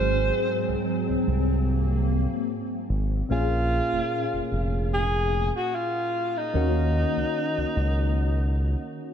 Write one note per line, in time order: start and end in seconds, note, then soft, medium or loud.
0.00 0.31 G#1 loud
0.00 2.85 G#2 medium
0.00 2.85 F#3 medium
0.00 3.26 F#3 medium
0.00 1.23 G#3 medium
0.00 2.86 C4 medium
0.00 3.26 C4 medium
0.00 2.86 G#4 medium
0.00 0.87 C5 loud
0.68 0.76 C2 soft
1.09 1.16 C2 soft
1.27 2.26 C2 medium
1.27 3.28 A#3 medium
2.90 3.22 G#1 medium
3.29 3.81 A#1 loud
3.29 6.50 A#2 medium
3.29 6.50 A#3 medium
3.29 6.51 C#4 medium
3.29 4.48 F4 loud
3.29 6.51 G#4 medium
3.93 4.00 F1 soft
4.33 4.41 F1 soft
4.52 5.51 F1 medium
4.94 5.51 G#4 loud
5.56 5.76 F#4 medium
5.75 6.39 F4 medium
6.37 8.80 D#4 medium
6.53 7.05 D#2 medium
6.53 9.14 D#3 medium
6.53 9.14 A#3 medium
6.53 9.14 C#4 medium
6.53 9.14 F#4 medium
7.17 7.24 C#2 soft
7.57 7.65 C#2 soft
7.76 8.75 C#2 medium